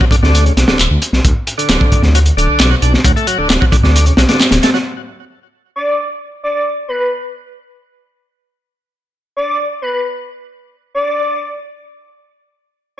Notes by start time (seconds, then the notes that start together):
0.00 F#3, kick
0.11 D3, kick, closed hi-hat
0.23 D2 D3, snare
0.35 closed hi-hat
0.46 C#3, closed hi-hat
0.57 B1, snare, closed hi-hat
0.68 D1 D3, snare
0.79 D1, clap, closed hi-hat
0.90 D2
1.02 closed hi-hat
1.13 B1, snare
1.25 D2, kick, closed hi-hat
1.47 closed hi-hat
1.58 D3, closed hi-hat
1.69 D1, snare, clap, closed hi-hat
1.81 kick
1.92 kick, closed hi-hat
2.03 D2, snare
2.15 F#3, closed hi-hat
2.26 closed hi-hat
2.37 D1 D3, closed hi-hat
2.49 B1
2.59 B1, snare, clap, closed hi-hat
2.71 F#3
2.82 B1 D4, closed hi-hat
2.94 C#3, snare
3.04 D2 F#3, kick, closed hi-hat
3.16 A3, closed hi-hat
3.27 F#3, closed hi-hat
3.38 D1 D3
3.50 D1 D3, snare, clap, closed hi-hat
3.61 F#3, kick
3.72 D3, kick, closed hi-hat
3.83 D2 D3, snare
3.96 closed hi-hat
4.06 C#3, closed hi-hat
4.17 B1 F#3, snare, closed hi-hat
4.29 D3, snare, closed hi-hat
4.40 snare, clap, closed hi-hat
4.51 D1 C#3, snare, closed hi-hat
4.63 A3, snare, closed hi-hat
4.74 F#3, snare
5.76 D5
6.43 D5
6.55 D5
6.88 B4
6.99 B4
9.37 D5
9.82 B4
9.93 B4
10.95 D5